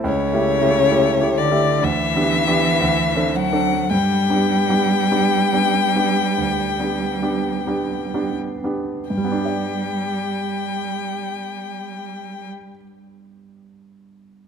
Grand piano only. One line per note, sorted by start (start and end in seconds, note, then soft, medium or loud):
0.04 0.32 C#2 medium
0.33 0.59 A3 soft
0.33 0.59 E4 soft
0.33 0.60 G4 soft
0.61 0.88 A3 soft
0.61 0.88 E4 soft
0.61 0.88 G4 soft
0.90 1.18 A3 soft
0.90 1.18 E4 soft
0.90 1.18 G4 medium
1.20 1.48 A3 soft
1.20 1.48 E4 soft
1.20 1.49 G4 soft
1.51 1.80 A3 soft
1.51 1.80 E4 soft
1.51 1.80 G4 soft
1.83 2.14 D2 medium
2.16 2.45 B3 soft
2.16 2.45 D4 soft
2.16 2.45 G4 soft
2.47 2.78 B3 soft
2.47 2.78 D4 soft
2.47 2.78 G4 soft
2.81 3.15 D2 medium
3.16 3.49 C4 soft
3.16 3.49 D4 soft
3.16 3.49 A4 soft
3.52 3.86 C4 soft
3.52 3.87 D4 soft
3.52 3.87 A4 soft
3.91 4.28 G2 medium
4.30 4.65 B3 soft
4.30 4.65 D4 soft
4.30 4.65 G4 soft
4.69 5.06 B3 soft
4.69 5.06 D4 soft
4.69 5.06 G4 soft
5.11 5.48 B3 soft
5.11 5.48 D4 soft
5.11 5.49 G4 soft
5.53 5.90 B3 soft
5.53 5.91 D4 soft
5.53 5.91 G4 soft
5.96 6.33 B3 soft
5.96 6.33 D4 soft
5.96 6.33 G4 soft
6.38 6.78 D2 soft
6.80 7.18 B3 soft
6.80 7.19 D4 soft
6.80 7.19 G4 soft
7.22 7.63 B3 soft
7.22 7.63 D4 soft
7.22 7.64 G4 soft
7.67 8.10 B3 soft
7.67 8.10 D4 soft
7.67 8.11 G4 soft
8.14 8.60 B3 soft
8.14 8.60 D4 soft
8.14 8.60 G4 soft
8.64 9.07 B3 soft
8.64 9.07 D4 soft
8.64 9.07 G4 soft
9.10 12.48 G2 soft
9.17 12.55 G3 soft
9.25 12.63 B3 soft
9.32 12.70 D4 soft
9.38 12.76 G4 soft
9.45 12.83 D5 soft